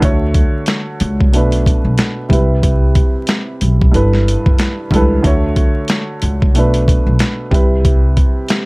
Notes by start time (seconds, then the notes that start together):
0.00 D2 D3 A3 F#4, kick, closed hi-hat
0.05 C#5
0.34 kick, closed hi-hat
0.66 snare, closed hi-hat
1.00 C#2, closed hi-hat
1.21 kick
1.33 B1 B2 A3 D4, closed hi-hat
1.37 B4
1.52 closed hi-hat
1.66 kick, closed hi-hat
1.84 B1
1.98 snare, closed hi-hat
2.29 C2 C3 G3 E4, kick, closed hi-hat
2.33 B4
2.63 kick, closed hi-hat
2.95 kick, closed hi-hat
3.27 snare, closed hi-hat
3.61 B1, closed hi-hat
3.81 kick
3.92 G1 G2 E3 A4, closed hi-hat
3.96 B4
4.13 snare
4.28 closed hi-hat
4.46 F#1, kick
4.59 snare, closed hi-hat
4.91 C#2 G2 E3, kick, closed hi-hat
4.95 A4 B4
5.22 D2 D3 A3 F#4, kick, closed hi-hat
5.27 C#5
5.56 kick, closed hi-hat
5.88 snare, closed hi-hat
6.22 C#2, closed hi-hat
6.42 kick
6.54 B1 B2 A3 D4, closed hi-hat
6.59 B4
6.74 closed hi-hat
6.88 kick, closed hi-hat
7.06 B1
7.19 snare, closed hi-hat
7.51 C2 C3 G3 E4, kick, closed hi-hat
7.55 B4
7.85 kick, closed hi-hat
8.17 kick, closed hi-hat
8.49 snare, closed hi-hat